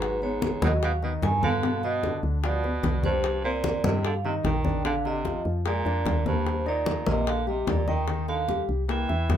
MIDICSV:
0, 0, Header, 1, 6, 480
1, 0, Start_track
1, 0, Key_signature, -3, "major"
1, 0, Tempo, 403226
1, 20, Time_signature, 4, 2, 24, 8
1, 11155, End_track
2, 0, Start_track
2, 0, Title_t, "Vibraphone"
2, 0, Program_c, 0, 11
2, 0, Note_on_c, 0, 71, 79
2, 234, Note_off_c, 0, 71, 0
2, 277, Note_on_c, 0, 73, 105
2, 761, Note_off_c, 0, 73, 0
2, 764, Note_on_c, 0, 75, 97
2, 866, Note_off_c, 0, 75, 0
2, 1005, Note_on_c, 0, 77, 92
2, 1106, Note_off_c, 0, 77, 0
2, 1236, Note_on_c, 0, 75, 76
2, 1339, Note_off_c, 0, 75, 0
2, 1474, Note_on_c, 0, 80, 108
2, 1688, Note_off_c, 0, 80, 0
2, 1713, Note_on_c, 0, 77, 92
2, 2197, Note_off_c, 0, 77, 0
2, 2198, Note_on_c, 0, 75, 104
2, 2632, Note_off_c, 0, 75, 0
2, 2914, Note_on_c, 0, 74, 92
2, 3629, Note_on_c, 0, 72, 92
2, 3644, Note_off_c, 0, 74, 0
2, 4110, Note_on_c, 0, 74, 87
2, 4115, Note_off_c, 0, 72, 0
2, 4589, Note_on_c, 0, 75, 91
2, 4595, Note_off_c, 0, 74, 0
2, 4827, Note_off_c, 0, 75, 0
2, 4835, Note_on_c, 0, 77, 86
2, 4938, Note_off_c, 0, 77, 0
2, 5064, Note_on_c, 0, 75, 77
2, 5169, Note_off_c, 0, 75, 0
2, 5312, Note_on_c, 0, 79, 94
2, 5749, Note_off_c, 0, 79, 0
2, 5787, Note_on_c, 0, 77, 93
2, 5892, Note_off_c, 0, 77, 0
2, 6034, Note_on_c, 0, 75, 96
2, 6471, Note_off_c, 0, 75, 0
2, 6752, Note_on_c, 0, 74, 84
2, 7416, Note_off_c, 0, 74, 0
2, 7473, Note_on_c, 0, 72, 87
2, 7911, Note_off_c, 0, 72, 0
2, 7957, Note_on_c, 0, 74, 93
2, 8437, Note_on_c, 0, 75, 94
2, 8441, Note_off_c, 0, 74, 0
2, 8651, Note_off_c, 0, 75, 0
2, 8674, Note_on_c, 0, 77, 91
2, 8890, Note_off_c, 0, 77, 0
2, 8915, Note_on_c, 0, 75, 78
2, 9130, Note_off_c, 0, 75, 0
2, 9153, Note_on_c, 0, 74, 85
2, 9369, Note_off_c, 0, 74, 0
2, 9389, Note_on_c, 0, 79, 90
2, 9832, Note_off_c, 0, 79, 0
2, 9867, Note_on_c, 0, 77, 93
2, 10311, Note_off_c, 0, 77, 0
2, 10590, Note_on_c, 0, 79, 75
2, 11155, Note_off_c, 0, 79, 0
2, 11155, End_track
3, 0, Start_track
3, 0, Title_t, "Upright piano"
3, 0, Program_c, 1, 0
3, 0, Note_on_c, 1, 54, 75
3, 0, Note_on_c, 1, 66, 76
3, 172, Note_off_c, 1, 54, 0
3, 175, Note_off_c, 1, 66, 0
3, 262, Note_on_c, 1, 59, 67
3, 267, Note_on_c, 1, 71, 69
3, 653, Note_off_c, 1, 59, 0
3, 657, Note_off_c, 1, 71, 0
3, 742, Note_on_c, 1, 54, 67
3, 746, Note_on_c, 1, 66, 70
3, 1133, Note_off_c, 1, 54, 0
3, 1135, Note_off_c, 1, 66, 0
3, 1217, Note_on_c, 1, 51, 77
3, 1221, Note_on_c, 1, 63, 70
3, 1609, Note_off_c, 1, 51, 0
3, 1612, Note_off_c, 1, 63, 0
3, 1705, Note_on_c, 1, 59, 73
3, 1707, Note_on_c, 1, 71, 69
3, 1898, Note_off_c, 1, 59, 0
3, 1898, Note_off_c, 1, 71, 0
3, 1935, Note_on_c, 1, 47, 81
3, 1943, Note_on_c, 1, 59, 80
3, 2328, Note_off_c, 1, 47, 0
3, 2333, Note_off_c, 1, 59, 0
3, 2417, Note_on_c, 1, 50, 70
3, 2420, Note_on_c, 1, 62, 68
3, 2809, Note_off_c, 1, 50, 0
3, 2811, Note_off_c, 1, 62, 0
3, 2897, Note_on_c, 1, 53, 74
3, 2901, Note_on_c, 1, 65, 71
3, 3092, Note_off_c, 1, 53, 0
3, 3094, Note_off_c, 1, 65, 0
3, 3141, Note_on_c, 1, 59, 68
3, 3144, Note_on_c, 1, 71, 70
3, 3531, Note_off_c, 1, 59, 0
3, 3532, Note_off_c, 1, 71, 0
3, 3615, Note_on_c, 1, 55, 72
3, 3618, Note_on_c, 1, 67, 73
3, 4007, Note_off_c, 1, 55, 0
3, 4009, Note_off_c, 1, 67, 0
3, 4096, Note_on_c, 1, 60, 75
3, 4099, Note_on_c, 1, 72, 74
3, 4488, Note_off_c, 1, 60, 0
3, 4490, Note_off_c, 1, 72, 0
3, 4569, Note_on_c, 1, 55, 76
3, 4573, Note_on_c, 1, 67, 68
3, 4964, Note_off_c, 1, 55, 0
3, 4966, Note_off_c, 1, 67, 0
3, 5054, Note_on_c, 1, 51, 72
3, 5056, Note_on_c, 1, 63, 73
3, 5447, Note_off_c, 1, 51, 0
3, 5448, Note_off_c, 1, 63, 0
3, 5530, Note_on_c, 1, 62, 73
3, 5534, Note_on_c, 1, 74, 73
3, 5727, Note_off_c, 1, 62, 0
3, 5730, Note_off_c, 1, 74, 0
3, 5768, Note_on_c, 1, 50, 81
3, 5770, Note_on_c, 1, 62, 72
3, 6164, Note_off_c, 1, 50, 0
3, 6165, Note_off_c, 1, 62, 0
3, 6254, Note_on_c, 1, 53, 72
3, 6258, Note_on_c, 1, 65, 70
3, 6647, Note_off_c, 1, 53, 0
3, 6649, Note_off_c, 1, 65, 0
3, 6730, Note_on_c, 1, 56, 70
3, 6732, Note_on_c, 1, 68, 76
3, 6928, Note_off_c, 1, 56, 0
3, 6929, Note_off_c, 1, 68, 0
3, 6967, Note_on_c, 1, 62, 73
3, 6970, Note_on_c, 1, 74, 75
3, 7364, Note_off_c, 1, 62, 0
3, 7366, Note_off_c, 1, 74, 0
3, 7446, Note_on_c, 1, 58, 73
3, 7454, Note_on_c, 1, 70, 74
3, 7844, Note_off_c, 1, 58, 0
3, 7848, Note_off_c, 1, 70, 0
3, 7929, Note_on_c, 1, 63, 78
3, 7931, Note_on_c, 1, 74, 76
3, 8326, Note_off_c, 1, 63, 0
3, 8327, Note_off_c, 1, 74, 0
3, 8408, Note_on_c, 1, 58, 74
3, 8412, Note_on_c, 1, 70, 71
3, 8806, Note_off_c, 1, 58, 0
3, 8808, Note_off_c, 1, 70, 0
3, 8889, Note_on_c, 1, 55, 69
3, 8892, Note_on_c, 1, 67, 76
3, 9287, Note_off_c, 1, 55, 0
3, 9288, Note_off_c, 1, 67, 0
3, 9373, Note_on_c, 1, 63, 73
3, 9376, Note_on_c, 1, 75, 71
3, 9572, Note_off_c, 1, 63, 0
3, 9574, Note_off_c, 1, 75, 0
3, 9617, Note_on_c, 1, 51, 79
3, 9617, Note_on_c, 1, 63, 72
3, 10012, Note_off_c, 1, 51, 0
3, 10013, Note_off_c, 1, 63, 0
3, 10098, Note_on_c, 1, 55, 76
3, 10098, Note_on_c, 1, 67, 68
3, 10493, Note_off_c, 1, 55, 0
3, 10493, Note_off_c, 1, 67, 0
3, 10574, Note_on_c, 1, 58, 73
3, 10575, Note_on_c, 1, 70, 71
3, 10775, Note_off_c, 1, 58, 0
3, 10775, Note_off_c, 1, 70, 0
3, 10819, Note_on_c, 1, 64, 75
3, 10819, Note_on_c, 1, 76, 67
3, 11155, Note_off_c, 1, 64, 0
3, 11155, Note_off_c, 1, 76, 0
3, 11155, End_track
4, 0, Start_track
4, 0, Title_t, "Baritone saxophone"
4, 0, Program_c, 2, 67
4, 0, Note_on_c, 2, 44, 84
4, 233, Note_off_c, 2, 44, 0
4, 268, Note_on_c, 2, 44, 79
4, 709, Note_off_c, 2, 44, 0
4, 752, Note_on_c, 2, 47, 74
4, 857, Note_off_c, 2, 47, 0
4, 991, Note_on_c, 2, 47, 82
4, 1095, Note_off_c, 2, 47, 0
4, 1231, Note_on_c, 2, 47, 68
4, 1336, Note_off_c, 2, 47, 0
4, 1466, Note_on_c, 2, 51, 76
4, 1684, Note_off_c, 2, 51, 0
4, 1706, Note_on_c, 2, 50, 93
4, 2147, Note_off_c, 2, 50, 0
4, 2188, Note_on_c, 2, 47, 85
4, 2627, Note_off_c, 2, 47, 0
4, 2903, Note_on_c, 2, 47, 86
4, 3569, Note_off_c, 2, 47, 0
4, 3625, Note_on_c, 2, 43, 81
4, 4065, Note_off_c, 2, 43, 0
4, 4097, Note_on_c, 2, 46, 85
4, 4541, Note_off_c, 2, 46, 0
4, 4577, Note_on_c, 2, 48, 73
4, 4798, Note_off_c, 2, 48, 0
4, 4820, Note_on_c, 2, 50, 79
4, 4926, Note_off_c, 2, 50, 0
4, 5057, Note_on_c, 2, 48, 75
4, 5164, Note_off_c, 2, 48, 0
4, 5297, Note_on_c, 2, 51, 80
4, 5741, Note_off_c, 2, 51, 0
4, 5775, Note_on_c, 2, 50, 80
4, 5883, Note_off_c, 2, 50, 0
4, 6012, Note_on_c, 2, 48, 80
4, 6459, Note_off_c, 2, 48, 0
4, 6736, Note_on_c, 2, 46, 90
4, 7408, Note_off_c, 2, 46, 0
4, 7459, Note_on_c, 2, 43, 78
4, 7904, Note_off_c, 2, 43, 0
4, 7942, Note_on_c, 2, 46, 73
4, 8386, Note_off_c, 2, 46, 0
4, 8425, Note_on_c, 2, 48, 74
4, 8644, Note_off_c, 2, 48, 0
4, 8670, Note_on_c, 2, 50, 79
4, 8887, Note_off_c, 2, 50, 0
4, 8907, Note_on_c, 2, 48, 64
4, 9126, Note_off_c, 2, 48, 0
4, 9147, Note_on_c, 2, 46, 68
4, 9366, Note_off_c, 2, 46, 0
4, 9384, Note_on_c, 2, 51, 79
4, 9829, Note_off_c, 2, 51, 0
4, 9862, Note_on_c, 2, 50, 75
4, 10309, Note_off_c, 2, 50, 0
4, 10587, Note_on_c, 2, 52, 73
4, 11155, Note_off_c, 2, 52, 0
4, 11155, End_track
5, 0, Start_track
5, 0, Title_t, "FM bass"
5, 0, Program_c, 3, 39
5, 0, Note_on_c, 3, 32, 78
5, 667, Note_off_c, 3, 32, 0
5, 739, Note_on_c, 3, 39, 93
5, 1409, Note_off_c, 3, 39, 0
5, 1461, Note_on_c, 3, 43, 91
5, 2584, Note_off_c, 3, 43, 0
5, 2656, Note_on_c, 3, 38, 95
5, 3326, Note_off_c, 3, 38, 0
5, 3375, Note_on_c, 3, 36, 91
5, 4502, Note_off_c, 3, 36, 0
5, 4569, Note_on_c, 3, 43, 89
5, 5243, Note_off_c, 3, 43, 0
5, 5290, Note_on_c, 3, 34, 85
5, 6420, Note_off_c, 3, 34, 0
5, 6493, Note_on_c, 3, 41, 89
5, 6940, Note_off_c, 3, 41, 0
5, 6972, Note_on_c, 3, 41, 75
5, 7196, Note_off_c, 3, 41, 0
5, 7213, Note_on_c, 3, 39, 89
5, 8344, Note_off_c, 3, 39, 0
5, 8416, Note_on_c, 3, 34, 85
5, 9090, Note_off_c, 3, 34, 0
5, 9139, Note_on_c, 3, 39, 85
5, 10270, Note_off_c, 3, 39, 0
5, 10343, Note_on_c, 3, 36, 85
5, 10790, Note_off_c, 3, 36, 0
5, 10830, Note_on_c, 3, 40, 80
5, 11051, Note_off_c, 3, 40, 0
5, 11065, Note_on_c, 3, 41, 76
5, 11155, Note_off_c, 3, 41, 0
5, 11155, End_track
6, 0, Start_track
6, 0, Title_t, "Drums"
6, 22, Note_on_c, 9, 63, 37
6, 24, Note_on_c, 9, 60, 60
6, 141, Note_off_c, 9, 63, 0
6, 143, Note_off_c, 9, 60, 0
6, 262, Note_on_c, 9, 63, 35
6, 381, Note_off_c, 9, 63, 0
6, 501, Note_on_c, 9, 63, 79
6, 503, Note_on_c, 9, 60, 56
6, 620, Note_off_c, 9, 63, 0
6, 622, Note_off_c, 9, 60, 0
6, 740, Note_on_c, 9, 63, 100
6, 859, Note_off_c, 9, 63, 0
6, 981, Note_on_c, 9, 63, 33
6, 985, Note_on_c, 9, 60, 64
6, 1100, Note_off_c, 9, 63, 0
6, 1104, Note_off_c, 9, 60, 0
6, 1220, Note_on_c, 9, 63, 31
6, 1339, Note_off_c, 9, 63, 0
6, 1457, Note_on_c, 9, 63, 90
6, 1467, Note_on_c, 9, 60, 65
6, 1467, Note_on_c, 9, 61, 76
6, 1576, Note_off_c, 9, 63, 0
6, 1586, Note_off_c, 9, 60, 0
6, 1586, Note_off_c, 9, 61, 0
6, 1700, Note_on_c, 9, 63, 89
6, 1819, Note_off_c, 9, 63, 0
6, 1943, Note_on_c, 9, 63, 36
6, 1945, Note_on_c, 9, 60, 62
6, 2062, Note_off_c, 9, 63, 0
6, 2064, Note_off_c, 9, 60, 0
6, 2180, Note_on_c, 9, 63, 38
6, 2186, Note_on_c, 9, 60, 31
6, 2299, Note_off_c, 9, 63, 0
6, 2305, Note_off_c, 9, 60, 0
6, 2420, Note_on_c, 9, 63, 55
6, 2423, Note_on_c, 9, 60, 57
6, 2539, Note_off_c, 9, 63, 0
6, 2542, Note_off_c, 9, 60, 0
6, 2656, Note_on_c, 9, 63, 34
6, 2775, Note_off_c, 9, 63, 0
6, 2896, Note_on_c, 9, 63, 32
6, 2900, Note_on_c, 9, 60, 72
6, 3015, Note_off_c, 9, 63, 0
6, 3019, Note_off_c, 9, 60, 0
6, 3138, Note_on_c, 9, 63, 34
6, 3143, Note_on_c, 9, 60, 33
6, 3258, Note_off_c, 9, 63, 0
6, 3262, Note_off_c, 9, 60, 0
6, 3373, Note_on_c, 9, 63, 85
6, 3380, Note_on_c, 9, 60, 64
6, 3380, Note_on_c, 9, 61, 77
6, 3492, Note_off_c, 9, 63, 0
6, 3499, Note_off_c, 9, 60, 0
6, 3499, Note_off_c, 9, 61, 0
6, 3612, Note_on_c, 9, 63, 82
6, 3622, Note_on_c, 9, 60, 31
6, 3731, Note_off_c, 9, 63, 0
6, 3741, Note_off_c, 9, 60, 0
6, 3853, Note_on_c, 9, 63, 32
6, 3856, Note_on_c, 9, 60, 67
6, 3972, Note_off_c, 9, 63, 0
6, 3975, Note_off_c, 9, 60, 0
6, 4093, Note_on_c, 9, 63, 36
6, 4212, Note_off_c, 9, 63, 0
6, 4331, Note_on_c, 9, 63, 89
6, 4337, Note_on_c, 9, 60, 61
6, 4450, Note_off_c, 9, 63, 0
6, 4456, Note_off_c, 9, 60, 0
6, 4573, Note_on_c, 9, 63, 95
6, 4692, Note_off_c, 9, 63, 0
6, 4813, Note_on_c, 9, 63, 36
6, 4816, Note_on_c, 9, 60, 69
6, 4932, Note_off_c, 9, 63, 0
6, 4935, Note_off_c, 9, 60, 0
6, 5053, Note_on_c, 9, 63, 33
6, 5172, Note_off_c, 9, 63, 0
6, 5291, Note_on_c, 9, 63, 84
6, 5294, Note_on_c, 9, 60, 63
6, 5294, Note_on_c, 9, 61, 77
6, 5410, Note_off_c, 9, 63, 0
6, 5413, Note_off_c, 9, 60, 0
6, 5413, Note_off_c, 9, 61, 0
6, 5530, Note_on_c, 9, 63, 86
6, 5649, Note_off_c, 9, 63, 0
6, 5769, Note_on_c, 9, 63, 34
6, 5773, Note_on_c, 9, 60, 65
6, 5888, Note_off_c, 9, 63, 0
6, 5892, Note_off_c, 9, 60, 0
6, 6013, Note_on_c, 9, 63, 38
6, 6014, Note_on_c, 9, 60, 35
6, 6132, Note_off_c, 9, 63, 0
6, 6133, Note_off_c, 9, 60, 0
6, 6248, Note_on_c, 9, 63, 52
6, 6252, Note_on_c, 9, 60, 53
6, 6367, Note_off_c, 9, 63, 0
6, 6371, Note_off_c, 9, 60, 0
6, 6489, Note_on_c, 9, 63, 37
6, 6608, Note_off_c, 9, 63, 0
6, 6727, Note_on_c, 9, 63, 35
6, 6733, Note_on_c, 9, 60, 73
6, 6846, Note_off_c, 9, 63, 0
6, 6852, Note_off_c, 9, 60, 0
6, 6967, Note_on_c, 9, 63, 35
6, 6979, Note_on_c, 9, 60, 35
6, 7086, Note_off_c, 9, 63, 0
6, 7098, Note_off_c, 9, 60, 0
6, 7208, Note_on_c, 9, 63, 83
6, 7220, Note_on_c, 9, 60, 63
6, 7220, Note_on_c, 9, 61, 77
6, 7327, Note_off_c, 9, 63, 0
6, 7339, Note_off_c, 9, 60, 0
6, 7339, Note_off_c, 9, 61, 0
6, 7452, Note_on_c, 9, 63, 83
6, 7458, Note_on_c, 9, 60, 34
6, 7571, Note_off_c, 9, 63, 0
6, 7577, Note_off_c, 9, 60, 0
6, 7693, Note_on_c, 9, 63, 34
6, 7697, Note_on_c, 9, 60, 58
6, 7812, Note_off_c, 9, 63, 0
6, 7816, Note_off_c, 9, 60, 0
6, 7933, Note_on_c, 9, 63, 35
6, 8052, Note_off_c, 9, 63, 0
6, 8169, Note_on_c, 9, 63, 87
6, 8176, Note_on_c, 9, 60, 58
6, 8288, Note_off_c, 9, 63, 0
6, 8296, Note_off_c, 9, 60, 0
6, 8410, Note_on_c, 9, 63, 90
6, 8529, Note_off_c, 9, 63, 0
6, 8653, Note_on_c, 9, 63, 32
6, 8657, Note_on_c, 9, 60, 76
6, 8772, Note_off_c, 9, 63, 0
6, 8776, Note_off_c, 9, 60, 0
6, 8896, Note_on_c, 9, 63, 35
6, 9015, Note_off_c, 9, 63, 0
6, 9134, Note_on_c, 9, 63, 91
6, 9138, Note_on_c, 9, 60, 70
6, 9138, Note_on_c, 9, 61, 77
6, 9253, Note_off_c, 9, 63, 0
6, 9257, Note_off_c, 9, 60, 0
6, 9257, Note_off_c, 9, 61, 0
6, 9376, Note_on_c, 9, 63, 76
6, 9495, Note_off_c, 9, 63, 0
6, 9614, Note_on_c, 9, 60, 64
6, 9619, Note_on_c, 9, 63, 37
6, 9733, Note_off_c, 9, 60, 0
6, 9738, Note_off_c, 9, 63, 0
6, 9858, Note_on_c, 9, 63, 36
6, 9860, Note_on_c, 9, 60, 35
6, 9977, Note_off_c, 9, 63, 0
6, 9979, Note_off_c, 9, 60, 0
6, 10099, Note_on_c, 9, 63, 53
6, 10102, Note_on_c, 9, 60, 58
6, 10218, Note_off_c, 9, 63, 0
6, 10221, Note_off_c, 9, 60, 0
6, 10342, Note_on_c, 9, 63, 34
6, 10461, Note_off_c, 9, 63, 0
6, 10581, Note_on_c, 9, 63, 37
6, 10584, Note_on_c, 9, 60, 72
6, 10700, Note_off_c, 9, 63, 0
6, 10703, Note_off_c, 9, 60, 0
6, 10821, Note_on_c, 9, 63, 37
6, 10825, Note_on_c, 9, 60, 34
6, 10940, Note_off_c, 9, 63, 0
6, 10944, Note_off_c, 9, 60, 0
6, 11065, Note_on_c, 9, 63, 92
6, 11068, Note_on_c, 9, 60, 67
6, 11068, Note_on_c, 9, 61, 83
6, 11155, Note_off_c, 9, 60, 0
6, 11155, Note_off_c, 9, 61, 0
6, 11155, Note_off_c, 9, 63, 0
6, 11155, End_track
0, 0, End_of_file